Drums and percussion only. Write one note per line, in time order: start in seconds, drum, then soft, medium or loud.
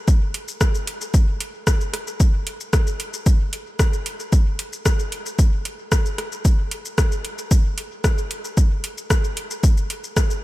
0.08 kick loud
0.08 shaker medium
0.34 closed hi-hat medium
0.48 shaker soft
0.61 kick loud
0.61 cross-stick medium
0.61 shaker medium
0.75 shaker soft
0.87 closed hi-hat medium
1.01 shaker soft
1.14 kick loud
1.14 shaker medium
1.40 closed hi-hat medium
1.67 kick loud
1.67 cross-stick medium
1.67 shaker medium
1.81 shaker soft
1.94 cross-stick soft
1.94 closed hi-hat medium
2.07 shaker soft
2.20 kick loud
2.20 shaker medium
2.47 closed hi-hat medium
2.60 shaker soft
2.73 kick loud
2.73 cross-stick medium
2.73 shaker medium
2.87 shaker soft
3.00 closed hi-hat medium
3.14 shaker soft
3.26 kick loud
3.26 shaker medium
3.53 closed hi-hat medium
3.79 kick loud
3.79 cross-stick medium
3.79 shaker medium
3.93 shaker soft
4.06 closed hi-hat medium
4.20 shaker soft
4.32 kick loud
4.32 shaker medium
4.59 closed hi-hat medium
4.73 shaker soft
4.86 kick loud
4.86 cross-stick medium
4.86 shaker medium
4.99 shaker soft
5.12 closed hi-hat medium
5.26 shaker soft
5.39 kick loud
5.39 shaker medium
5.65 closed hi-hat medium
5.92 kick loud
5.92 cross-stick medium
5.92 shaker medium
6.06 shaker soft
6.18 cross-stick soft
6.18 closed hi-hat medium
6.32 shaker soft
6.45 kick loud
6.45 shaker medium
6.71 closed hi-hat medium
6.85 shaker soft
6.98 kick loud
6.98 cross-stick medium
6.98 shaker medium
7.12 shaker soft
7.25 closed hi-hat medium
7.38 shaker soft
7.51 kick loud
7.51 shaker medium
7.78 closed hi-hat medium
8.04 kick loud
8.04 cross-stick medium
8.04 shaker medium
8.18 shaker soft
8.31 closed hi-hat medium
8.45 shaker soft
8.57 kick loud
8.57 shaker medium
8.84 closed hi-hat medium
8.98 shaker soft
9.10 kick loud
9.10 cross-stick medium
9.10 shaker medium
9.24 shaker soft
9.37 closed hi-hat medium
9.51 shaker soft
9.63 kick loud
9.63 shaker medium
9.77 shaker soft
9.90 closed hi-hat medium
10.04 shaker soft
10.17 kick loud
10.17 cross-stick medium
10.17 shaker medium
10.30 shaker soft